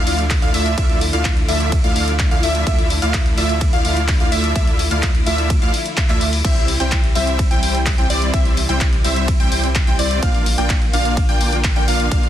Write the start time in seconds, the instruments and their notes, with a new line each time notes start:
Already playing: string section D3 F3 A3 E4
0.07 sub bass D2, supersaw synth A3 E4 F4 D5 F5, digital synth lead F5, open hi-hat
0.19 closed hi-hat
0.30 kick, clap, open hi-hat, ride
0.42 sub bass D2, supersaw synth A3 E4 F4 D5 F5, digital synth lead F5, closed hi-hat
0.54 sub bass D2, supersaw synth A3 E4 F4 D5 E5, digital synth lead E5, open hi-hat
0.66 closed hi-hat
0.78 sub bass D2, supersaw synth A3 E4 F4 D5 E5, digital synth lead E5, kick, closed hi-hat, ride
0.89 closed hi-hat
1.01 open hi-hat
1.13 sub bass D2, supersaw synth A3 E4 F4 D5 F5, digital synth lead F5, closed hi-hat
1.25 kick, clap, closed hi-hat, ride
1.37 closed hi-hat
1.49 sub bass D2, supersaw synth A3 E4 F4 D5 E5, digital synth lead E5, open hi-hat
1.60 closed hi-hat
1.72 kick, closed hi-hat, ride
1.84 sub bass D2, supersaw synth A3 E4 F4 D5 F5, digital synth lead F5, closed hi-hat
1.96 sub bass D2, supersaw synth A3 E4 F4 D5 F5, digital synth lead F5, open hi-hat
2.08 closed hi-hat
2.19 kick, clap, closed hi-hat, ride
2.31 sub bass D2, supersaw synth A3 E4 F4 D5 F5, digital synth lead F5, closed hi-hat
2.43 sub bass D2, supersaw synth A3 E4 F4 D5 E5, digital synth lead E5, open hi-hat
2.55 closed hi-hat
2.67 sub bass D2, supersaw synth A3 E4 F4 E5, digital synth lead E5, kick, closed hi-hat, ride
2.79 closed hi-hat
2.90 open hi-hat
3.02 sub bass D2, supersaw synth A3 E4 F4 D5 F5, digital synth lead F5, closed hi-hat
3.14 kick, clap, closed hi-hat, ride
3.26 closed hi-hat
3.38 sub bass D2, supersaw synth A3 E4 F4 D5 E5, digital synth lead E5, open hi-hat
3.49 closed hi-hat
3.61 kick, closed hi-hat, ride
3.73 sub bass D2, supersaw synth A3 E4 F4 D5 F5, digital synth lead F5, closed hi-hat
3.85 sub bass D2, supersaw synth A3 E4 F4 D5 F5, digital synth lead F5, open hi-hat
3.97 closed hi-hat
4.08 kick, clap, open hi-hat, ride
4.20 sub bass D2, supersaw synth A3 E4 F4 D5 F5, digital synth lead F5, closed hi-hat
4.32 sub bass D2, supersaw synth A3 E4 F4 D5 E5, digital synth lead E5, open hi-hat
4.44 closed hi-hat
4.56 sub bass D2, supersaw synth A3 E4 F4 E5, digital synth lead E5, kick, closed hi-hat, ride
4.67 closed hi-hat
4.79 open hi-hat
4.91 sub bass D2, supersaw synth A3 E4 F4 D5 F5, digital synth lead F5, closed hi-hat
5.03 kick, clap, closed hi-hat, ride
5.15 closed hi-hat
5.26 sub bass D2, supersaw synth A3 E4 F4 D5 E5, digital synth lead E5, open hi-hat
5.38 closed hi-hat
5.50 kick, closed hi-hat, ride
5.62 sub bass D2, supersaw synth A3 E4 F4 D5 F5, digital synth lead F5, closed hi-hat
5.74 open hi-hat
5.86 closed hi-hat
5.97 kick, clap, closed hi-hat, ride
6.09 sub bass D2, supersaw synth A3 E4 F4 D5 E5, digital synth lead E5, clap, closed hi-hat
6.21 open hi-hat
6.33 open hi-hat
6.45 sub bass C2, string section C3 E3 G3, supersaw synth G3 C4 E4 C5 E5, digital synth lead E5, kick, closed hi-hat, crash, ride
6.56 closed hi-hat
6.68 open hi-hat
6.80 sub bass C2, supersaw synth G3 C4 E4 C5 G5, digital synth lead G5, closed hi-hat
6.92 kick, clap, closed hi-hat, ride
7.04 closed hi-hat
7.15 sub bass C2, supersaw synth G3 C4 E4 C5 E5, digital synth lead E5, open hi-hat
7.27 closed hi-hat
7.39 kick, closed hi-hat, ride
7.51 sub bass C2, supersaw synth G3 C4 E4 C5 G5, digital synth lead G5, closed hi-hat
7.63 sub bass C2, supersaw synth G3 C4 E4 C5 G5, digital synth lead G5, open hi-hat
7.75 closed hi-hat
7.86 kick, clap, open hi-hat, ride
7.98 sub bass C2, supersaw synth G3 C4 E4 C5 G5, digital synth lead G5, closed hi-hat
8.10 sub bass C2, supersaw synth G3 C4 E4 C5 D5, digital synth lead D5, open hi-hat
8.22 closed hi-hat
8.34 sub bass C2, supersaw synth C4 E4 C5 E5, digital synth lead E5, kick, closed hi-hat, ride
8.45 closed hi-hat
8.57 open hi-hat
8.69 sub bass C2, supersaw synth G3 C4 E4 C5 G5, digital synth lead G5, closed hi-hat
8.81 kick, clap, closed hi-hat, ride
8.93 closed hi-hat
9.04 sub bass C2, supersaw synth G3 C4 E4 C5 E5, digital synth lead E5, open hi-hat
9.16 closed hi-hat
9.28 kick, closed hi-hat, ride
9.40 sub bass C2, supersaw synth G3 C4 E4 C5 G5, digital synth lead G5, closed hi-hat
9.52 sub bass C2, supersaw synth G3 C4 E4 C5 G5, digital synth lead G5, open hi-hat
9.64 closed hi-hat
9.75 kick, clap, closed hi-hat, ride
9.87 sub bass C2, supersaw synth G3 C4 E4 C5 G5, digital synth lead G5, closed hi-hat
9.99 sub bass C2, supersaw synth G3 C4 E4 C5 D5, digital synth lead D5, open hi-hat
10.11 closed hi-hat
10.23 sub bass A#1, string section D3 F3 A#3 F4, supersaw synth A#3 D4 F4 D5 F5, digital synth lead F5, kick, closed hi-hat, ride
10.34 closed hi-hat
10.46 open hi-hat
10.58 sub bass A#1, supersaw synth A#3 D4 F4 D5 G5, digital synth lead G5, closed hi-hat
10.70 kick, clap, closed hi-hat, ride
10.82 closed hi-hat
10.93 sub bass A#1, supersaw synth A#3 D4 F4 D5 F5, digital synth lead F5, open hi-hat
11.05 closed hi-hat
11.17 kick, closed hi-hat, ride
11.29 sub bass A#1, supersaw synth A#3 D4 F4 D5 G5, digital synth lead G5, closed hi-hat
11.41 sub bass A#1, supersaw synth A#3 D4 F4 D5 G5, digital synth lead G5, open hi-hat
11.53 closed hi-hat
11.64 kick, clap, open hi-hat, ride
11.76 sub bass A#1, supersaw synth A#3 D4 F4 D5 G5, digital synth lead G5, closed hi-hat
11.88 sub bass A#1, supersaw synth A#3 D4 F4 D5 F5, digital synth lead F5, open hi-hat
12.00 closed hi-hat
12.11 sub bass A#1, supersaw synth D4 D5, digital synth lead F5, kick, closed hi-hat, ride
12.23 closed hi-hat